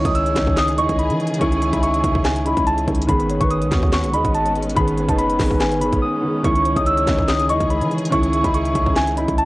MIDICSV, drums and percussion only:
0, 0, Header, 1, 2, 480
1, 0, Start_track
1, 0, Key_signature, 4, "minor"
1, 0, Tempo, 419580
1, 1611, Time_signature, 4, 2, 24, 8
1, 10811, End_track
2, 0, Start_track
2, 0, Title_t, "Drums"
2, 57, Note_on_c, 9, 36, 100
2, 58, Note_on_c, 9, 42, 69
2, 171, Note_off_c, 9, 42, 0
2, 171, Note_on_c, 9, 42, 82
2, 172, Note_off_c, 9, 36, 0
2, 286, Note_off_c, 9, 42, 0
2, 298, Note_on_c, 9, 42, 55
2, 411, Note_off_c, 9, 42, 0
2, 411, Note_on_c, 9, 36, 102
2, 411, Note_on_c, 9, 42, 86
2, 412, Note_on_c, 9, 38, 90
2, 416, Note_on_c, 9, 39, 68
2, 526, Note_off_c, 9, 36, 0
2, 526, Note_off_c, 9, 38, 0
2, 526, Note_off_c, 9, 42, 0
2, 530, Note_off_c, 9, 39, 0
2, 539, Note_on_c, 9, 36, 106
2, 651, Note_on_c, 9, 38, 116
2, 651, Note_on_c, 9, 42, 83
2, 653, Note_off_c, 9, 36, 0
2, 655, Note_on_c, 9, 39, 95
2, 765, Note_off_c, 9, 38, 0
2, 766, Note_off_c, 9, 42, 0
2, 769, Note_off_c, 9, 39, 0
2, 778, Note_on_c, 9, 42, 64
2, 892, Note_off_c, 9, 42, 0
2, 892, Note_on_c, 9, 42, 90
2, 1006, Note_off_c, 9, 42, 0
2, 1019, Note_on_c, 9, 36, 89
2, 1019, Note_on_c, 9, 42, 55
2, 1131, Note_off_c, 9, 42, 0
2, 1131, Note_on_c, 9, 42, 68
2, 1133, Note_off_c, 9, 36, 0
2, 1246, Note_off_c, 9, 42, 0
2, 1258, Note_on_c, 9, 42, 56
2, 1371, Note_off_c, 9, 42, 0
2, 1371, Note_on_c, 9, 42, 44
2, 1451, Note_off_c, 9, 42, 0
2, 1451, Note_on_c, 9, 42, 57
2, 1531, Note_off_c, 9, 42, 0
2, 1531, Note_on_c, 9, 42, 75
2, 1611, Note_off_c, 9, 42, 0
2, 1611, Note_on_c, 9, 36, 110
2, 1611, Note_on_c, 9, 42, 85
2, 1725, Note_off_c, 9, 42, 0
2, 1726, Note_off_c, 9, 36, 0
2, 1739, Note_on_c, 9, 42, 55
2, 1851, Note_off_c, 9, 42, 0
2, 1851, Note_on_c, 9, 42, 72
2, 1966, Note_off_c, 9, 42, 0
2, 1977, Note_on_c, 9, 36, 94
2, 1979, Note_on_c, 9, 42, 71
2, 2091, Note_off_c, 9, 42, 0
2, 2091, Note_on_c, 9, 42, 80
2, 2092, Note_off_c, 9, 36, 0
2, 2206, Note_off_c, 9, 42, 0
2, 2219, Note_on_c, 9, 42, 58
2, 2331, Note_off_c, 9, 42, 0
2, 2331, Note_on_c, 9, 36, 101
2, 2331, Note_on_c, 9, 42, 90
2, 2446, Note_off_c, 9, 36, 0
2, 2446, Note_off_c, 9, 42, 0
2, 2459, Note_on_c, 9, 36, 107
2, 2571, Note_on_c, 9, 38, 120
2, 2571, Note_on_c, 9, 42, 85
2, 2573, Note_off_c, 9, 36, 0
2, 2575, Note_on_c, 9, 39, 93
2, 2685, Note_off_c, 9, 38, 0
2, 2686, Note_off_c, 9, 42, 0
2, 2689, Note_off_c, 9, 39, 0
2, 2699, Note_on_c, 9, 42, 66
2, 2811, Note_off_c, 9, 42, 0
2, 2811, Note_on_c, 9, 42, 94
2, 2926, Note_off_c, 9, 42, 0
2, 2938, Note_on_c, 9, 42, 55
2, 2939, Note_on_c, 9, 36, 93
2, 3051, Note_off_c, 9, 42, 0
2, 3051, Note_on_c, 9, 42, 67
2, 3053, Note_off_c, 9, 36, 0
2, 3166, Note_off_c, 9, 42, 0
2, 3179, Note_on_c, 9, 42, 58
2, 3291, Note_on_c, 9, 36, 98
2, 3292, Note_off_c, 9, 42, 0
2, 3292, Note_on_c, 9, 42, 44
2, 3371, Note_off_c, 9, 42, 0
2, 3371, Note_on_c, 9, 42, 60
2, 3405, Note_off_c, 9, 36, 0
2, 3451, Note_off_c, 9, 42, 0
2, 3451, Note_on_c, 9, 42, 76
2, 3531, Note_off_c, 9, 42, 0
2, 3531, Note_on_c, 9, 36, 110
2, 3531, Note_on_c, 9, 42, 85
2, 3646, Note_off_c, 9, 36, 0
2, 3646, Note_off_c, 9, 42, 0
2, 3659, Note_on_c, 9, 42, 55
2, 3771, Note_off_c, 9, 42, 0
2, 3771, Note_on_c, 9, 42, 71
2, 3886, Note_off_c, 9, 42, 0
2, 3897, Note_on_c, 9, 36, 96
2, 3898, Note_on_c, 9, 42, 72
2, 4011, Note_off_c, 9, 42, 0
2, 4011, Note_on_c, 9, 42, 78
2, 4012, Note_off_c, 9, 36, 0
2, 4126, Note_off_c, 9, 42, 0
2, 4139, Note_on_c, 9, 42, 57
2, 4251, Note_off_c, 9, 42, 0
2, 4251, Note_on_c, 9, 36, 103
2, 4251, Note_on_c, 9, 42, 85
2, 4252, Note_on_c, 9, 38, 87
2, 4256, Note_on_c, 9, 39, 70
2, 4366, Note_off_c, 9, 36, 0
2, 4366, Note_off_c, 9, 38, 0
2, 4366, Note_off_c, 9, 42, 0
2, 4370, Note_off_c, 9, 39, 0
2, 4379, Note_on_c, 9, 36, 109
2, 4491, Note_on_c, 9, 38, 120
2, 4491, Note_on_c, 9, 42, 88
2, 4494, Note_off_c, 9, 36, 0
2, 4495, Note_on_c, 9, 39, 93
2, 4605, Note_off_c, 9, 38, 0
2, 4606, Note_off_c, 9, 42, 0
2, 4610, Note_off_c, 9, 39, 0
2, 4619, Note_on_c, 9, 42, 67
2, 4732, Note_off_c, 9, 42, 0
2, 4732, Note_on_c, 9, 42, 92
2, 4846, Note_off_c, 9, 42, 0
2, 4859, Note_on_c, 9, 36, 88
2, 4859, Note_on_c, 9, 42, 57
2, 4972, Note_off_c, 9, 42, 0
2, 4972, Note_on_c, 9, 42, 67
2, 4974, Note_off_c, 9, 36, 0
2, 5086, Note_off_c, 9, 42, 0
2, 5099, Note_on_c, 9, 42, 56
2, 5212, Note_off_c, 9, 42, 0
2, 5212, Note_on_c, 9, 42, 44
2, 5292, Note_off_c, 9, 42, 0
2, 5292, Note_on_c, 9, 42, 61
2, 5371, Note_off_c, 9, 42, 0
2, 5371, Note_on_c, 9, 42, 73
2, 5451, Note_on_c, 9, 36, 114
2, 5452, Note_off_c, 9, 42, 0
2, 5452, Note_on_c, 9, 42, 85
2, 5566, Note_off_c, 9, 36, 0
2, 5566, Note_off_c, 9, 42, 0
2, 5579, Note_on_c, 9, 42, 57
2, 5692, Note_off_c, 9, 42, 0
2, 5692, Note_on_c, 9, 42, 53
2, 5806, Note_off_c, 9, 42, 0
2, 5817, Note_on_c, 9, 36, 99
2, 5819, Note_on_c, 9, 42, 90
2, 5932, Note_off_c, 9, 36, 0
2, 5932, Note_off_c, 9, 42, 0
2, 5932, Note_on_c, 9, 42, 80
2, 6046, Note_off_c, 9, 42, 0
2, 6059, Note_on_c, 9, 42, 58
2, 6171, Note_on_c, 9, 36, 103
2, 6171, Note_on_c, 9, 46, 83
2, 6172, Note_on_c, 9, 38, 88
2, 6173, Note_off_c, 9, 42, 0
2, 6176, Note_on_c, 9, 39, 70
2, 6286, Note_off_c, 9, 36, 0
2, 6286, Note_off_c, 9, 38, 0
2, 6286, Note_off_c, 9, 46, 0
2, 6290, Note_off_c, 9, 39, 0
2, 6299, Note_on_c, 9, 36, 109
2, 6411, Note_on_c, 9, 38, 114
2, 6411, Note_on_c, 9, 42, 87
2, 6413, Note_off_c, 9, 36, 0
2, 6415, Note_on_c, 9, 39, 92
2, 6525, Note_off_c, 9, 38, 0
2, 6526, Note_off_c, 9, 42, 0
2, 6529, Note_off_c, 9, 39, 0
2, 6539, Note_on_c, 9, 42, 64
2, 6651, Note_off_c, 9, 42, 0
2, 6651, Note_on_c, 9, 42, 96
2, 6766, Note_off_c, 9, 42, 0
2, 6778, Note_on_c, 9, 42, 57
2, 6779, Note_on_c, 9, 36, 89
2, 6893, Note_off_c, 9, 36, 0
2, 6893, Note_off_c, 9, 42, 0
2, 7371, Note_on_c, 9, 36, 114
2, 7371, Note_on_c, 9, 42, 83
2, 7486, Note_off_c, 9, 36, 0
2, 7486, Note_off_c, 9, 42, 0
2, 7499, Note_on_c, 9, 42, 54
2, 7612, Note_off_c, 9, 42, 0
2, 7612, Note_on_c, 9, 42, 70
2, 7726, Note_off_c, 9, 42, 0
2, 7738, Note_on_c, 9, 36, 101
2, 7739, Note_on_c, 9, 42, 72
2, 7851, Note_off_c, 9, 42, 0
2, 7851, Note_on_c, 9, 42, 81
2, 7852, Note_off_c, 9, 36, 0
2, 7966, Note_off_c, 9, 42, 0
2, 7979, Note_on_c, 9, 42, 57
2, 8092, Note_off_c, 9, 42, 0
2, 8092, Note_on_c, 9, 36, 106
2, 8092, Note_on_c, 9, 38, 88
2, 8092, Note_on_c, 9, 42, 86
2, 8096, Note_on_c, 9, 39, 70
2, 8206, Note_off_c, 9, 36, 0
2, 8206, Note_off_c, 9, 38, 0
2, 8206, Note_off_c, 9, 42, 0
2, 8210, Note_off_c, 9, 39, 0
2, 8219, Note_on_c, 9, 36, 105
2, 8331, Note_on_c, 9, 38, 118
2, 8332, Note_on_c, 9, 42, 87
2, 8334, Note_off_c, 9, 36, 0
2, 8336, Note_on_c, 9, 39, 93
2, 8446, Note_off_c, 9, 38, 0
2, 8446, Note_off_c, 9, 42, 0
2, 8450, Note_off_c, 9, 39, 0
2, 8459, Note_on_c, 9, 42, 66
2, 8571, Note_off_c, 9, 42, 0
2, 8571, Note_on_c, 9, 42, 94
2, 8686, Note_off_c, 9, 42, 0
2, 8699, Note_on_c, 9, 36, 86
2, 8699, Note_on_c, 9, 42, 58
2, 8811, Note_off_c, 9, 42, 0
2, 8811, Note_on_c, 9, 42, 64
2, 8813, Note_off_c, 9, 36, 0
2, 8926, Note_off_c, 9, 42, 0
2, 8939, Note_on_c, 9, 42, 57
2, 9052, Note_off_c, 9, 42, 0
2, 9052, Note_on_c, 9, 42, 45
2, 9131, Note_off_c, 9, 42, 0
2, 9131, Note_on_c, 9, 42, 59
2, 9211, Note_off_c, 9, 42, 0
2, 9211, Note_on_c, 9, 42, 75
2, 9291, Note_off_c, 9, 42, 0
2, 9291, Note_on_c, 9, 36, 114
2, 9291, Note_on_c, 9, 42, 82
2, 9406, Note_off_c, 9, 36, 0
2, 9406, Note_off_c, 9, 42, 0
2, 9419, Note_on_c, 9, 42, 57
2, 9531, Note_off_c, 9, 42, 0
2, 9531, Note_on_c, 9, 42, 71
2, 9646, Note_off_c, 9, 42, 0
2, 9658, Note_on_c, 9, 36, 96
2, 9659, Note_on_c, 9, 42, 70
2, 9771, Note_off_c, 9, 42, 0
2, 9771, Note_on_c, 9, 42, 81
2, 9772, Note_off_c, 9, 36, 0
2, 9886, Note_off_c, 9, 42, 0
2, 9899, Note_on_c, 9, 42, 57
2, 10011, Note_off_c, 9, 42, 0
2, 10011, Note_on_c, 9, 36, 103
2, 10011, Note_on_c, 9, 42, 88
2, 10126, Note_off_c, 9, 36, 0
2, 10126, Note_off_c, 9, 42, 0
2, 10139, Note_on_c, 9, 36, 106
2, 10251, Note_on_c, 9, 38, 113
2, 10251, Note_on_c, 9, 42, 86
2, 10253, Note_off_c, 9, 36, 0
2, 10255, Note_on_c, 9, 39, 90
2, 10365, Note_off_c, 9, 38, 0
2, 10365, Note_off_c, 9, 42, 0
2, 10369, Note_off_c, 9, 39, 0
2, 10378, Note_on_c, 9, 42, 65
2, 10492, Note_off_c, 9, 42, 0
2, 10492, Note_on_c, 9, 42, 91
2, 10606, Note_off_c, 9, 42, 0
2, 10619, Note_on_c, 9, 36, 91
2, 10619, Note_on_c, 9, 42, 57
2, 10731, Note_off_c, 9, 42, 0
2, 10731, Note_on_c, 9, 42, 69
2, 10733, Note_off_c, 9, 36, 0
2, 10811, Note_off_c, 9, 42, 0
2, 10811, End_track
0, 0, End_of_file